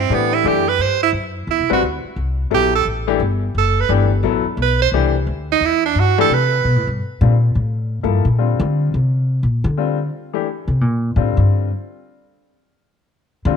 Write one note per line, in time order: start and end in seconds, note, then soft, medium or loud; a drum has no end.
0.00 0.15 C4 medium
0.10 0.43 A2 medium
0.10 0.43 E3 medium
0.10 0.44 A3 medium
0.10 0.44 D4 medium
0.10 0.44 G4 medium
0.14 0.36 B3 medium
0.34 0.49 E4 loud
0.44 0.78 F#2 medium
0.44 0.64 E3 medium
0.44 0.65 A3 medium
0.44 0.64 D4 medium
0.44 0.64 G4 medium
0.44 0.70 G4 medium
0.68 0.83 B4 loud
0.79 1.12 G2 medium
0.79 1.02 C5 loud
1.03 1.10 E4 loud
1.13 1.47 F#2 medium
1.47 1.61 E2 medium
1.47 1.70 E4 medium
1.59 1.70 C2 medium
1.70 1.81 A1 medium
1.70 1.81 G3 medium
1.70 1.81 C4 medium
1.70 1.81 F#4 medium
1.70 1.83 F#4 medium
1.70 1.81 B4 medium
1.83 2.03 D2 loud
2.04 muted upright bass stroke soft
2.16 2.50 C2 medium
2.51 2.85 A#1 medium
2.51 2.71 F#3 medium
2.51 2.71 B3 medium
2.51 2.71 E4 medium
2.51 2.73 G4 loud
2.51 2.71 A4 medium
2.75 2.86 A4 loud
2.85 3.19 A1 medium
3.07 3.19 E3 medium
3.07 3.19 A3 medium
3.07 3.19 D4 medium
3.07 3.19 G4 medium
3.20 3.54 G1 loud
3.55 3.88 F#1 medium
3.55 3.82 A4 medium
3.80 3.91 B4 loud
3.89 4.22 G1 loud
3.89 4.09 E3 medium
3.89 4.09 A3 medium
3.89 4.09 D4 medium
3.89 4.09 G4 medium
4.23 4.44 A1 medium
4.23 4.43 F#3 medium
4.23 4.43 B3 medium
4.23 4.43 E4 medium
4.23 4.44 A4 medium
4.45 muted upright bass stroke soft
4.57 4.91 B1 loud
4.62 4.80 B4 loud
4.82 4.89 C5 loud
4.92 5.26 C2 medium
4.92 5.13 E3 medium
4.92 5.13 A3 medium
4.92 5.13 D4 medium
4.92 5.13 G4 medium
5.27 5.60 D2 medium
5.52 5.67 D#4 loud
5.61 5.95 E2 medium
5.65 5.85 E4 loud
5.86 6.01 D4 loud
5.95 6.29 G2 loud
5.99 6.20 F#4 medium
6.18 6.30 E3 medium
6.18 6.30 A3 medium
6.18 6.30 D4 medium
6.18 6.30 G4 medium
6.18 6.35 A4 loud
6.30 6.64 C3 loud
6.30 6.89 B4 medium
6.64 6.76 B2 loud
6.76 6.87 A2 medium
6.87 6.99 G2 medium
7.21 7.54 A#2 medium
7.21 7.33 D3 medium
7.21 7.33 G3 soft
7.21 7.33 C4 soft
7.21 7.33 F4 medium
7.55 8.00 A2 medium
8.03 8.24 G2 medium
8.03 8.23 F3 medium
8.03 8.23 A#3 medium
8.03 8.23 E4 medium
8.03 8.23 A4 medium
8.25 8.59 A#2 medium
8.38 8.90 D3 soft
8.38 8.90 G3 soft
8.38 8.90 C4 soft
8.38 8.91 F4 medium
8.60 8.92 D3 loud
8.94 9.38 C3 medium
9.43 9.64 A#2 medium
9.64 10.08 D3 medium
9.77 9.97 D3 medium
9.77 9.97 G3 medium
9.77 9.97 C4 medium
9.77 9.97 F4 medium
10.33 10.45 E3 medium
10.33 10.45 A3 medium
10.33 10.45 D4 soft
10.33 10.45 G4 medium
10.68 10.81 C3 medium
10.81 11.15 A#2 medium
11.16 11.37 A2 medium
11.16 11.68 D3 medium
11.16 11.68 G3 medium
11.16 11.68 C4 medium
11.16 11.68 F4 medium
11.37 11.69 G2 medium
13.45 13.57 D3 loud
13.45 13.57 D3 medium
13.45 13.57 G3 medium
13.45 13.57 C4 medium
13.45 13.57 F4 medium